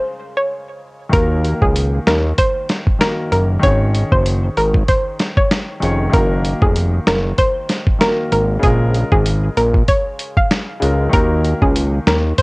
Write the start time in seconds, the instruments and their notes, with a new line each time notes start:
Already playing: grand piano C#3 G#3 F4 A#4
0.37 synth pluck C#5
1.09 analog synth bass D#2, grand piano D#3 A#3, synth pluck A#4, kick, closed hi-hat
1.15 grand piano F#4 A#4
1.45 closed hi-hat
1.62 analog synth bass C#2, synth pluck G#4, kick
1.76 closed hi-hat
2.07 analog synth bass D#2, synth pluck A#4, finger snap, snare, closed hi-hat
2.38 synth pluck C5, kick, closed hi-hat
2.69 snare, closed hi-hat
2.87 kick
2.99 grand piano D#3 A#3 F#4 A#4, synth pluck A#4, finger snap, snare, closed hi-hat
3.32 analog synth bass F#1, synth pluck A#4, closed hi-hat
3.59 analog synth bass G#1, grand piano D#3 C#4, synth pluck C#5, kick, closed hi-hat
3.65 grand piano G#4 C#5
3.95 closed hi-hat
4.12 analog synth bass F#1, synth pluck C5, kick
4.26 closed hi-hat
4.57 analog synth bass G#1, synth pluck A#4, closed hi-hat
4.74 kick
4.88 synth pluck C5, kick, closed hi-hat
5.19 snare, closed hi-hat
5.37 synth pluck C#5, kick
5.51 finger snap, snare, closed hi-hat
5.80 analog synth bass F1, grand piano D#3 C#4 G#4 C#5, closed hi-hat
6.09 analog synth bass F#1, grand piano D#3 A#3, synth pluck A#4, kick, closed hi-hat
6.15 grand piano F#4 A#4
6.45 closed hi-hat
6.62 analog synth bass F1, synth pluck G#4, kick
6.76 closed hi-hat
7.07 analog synth bass F#1, synth pluck A#4, finger snap, snare, closed hi-hat
7.38 synth pluck C5, kick, closed hi-hat
7.69 snare, closed hi-hat
7.87 kick
7.99 grand piano D#3 A#3 F#4 A#4, synth pluck A#4, finger snap, snare, closed hi-hat
8.32 analog synth bass G#1, synth pluck A#4, closed hi-hat
8.59 analog synth bass A#1, grand piano C#3 G#3, kick, closed hi-hat
8.63 grand piano F4 A#4, synth pluck G#4
8.94 closed hi-hat
9.12 analog synth bass G#1, synth pluck G#4, kick
9.26 closed hi-hat
9.57 analog synth bass A#1, synth pluck A#4, closed hi-hat
9.74 kick
9.88 synth pluck C#5, kick, closed hi-hat
10.19 closed hi-hat
10.37 synth pluck F5, kick
10.51 finger snap, snare, closed hi-hat
10.80 analog synth bass C#2, grand piano C#3 G#3 F4 A#4, closed hi-hat
11.10 analog synth bass D#2, grand piano D#3 A#3, synth pluck A#4, kick, closed hi-hat
11.15 grand piano F#4 A#4
11.45 closed hi-hat
11.62 analog synth bass C#2, synth pluck G#4, kick
11.76 closed hi-hat
12.07 analog synth bass D#2, synth pluck A#4, finger snap, snare, closed hi-hat
12.38 synth pluck C5, kick, closed hi-hat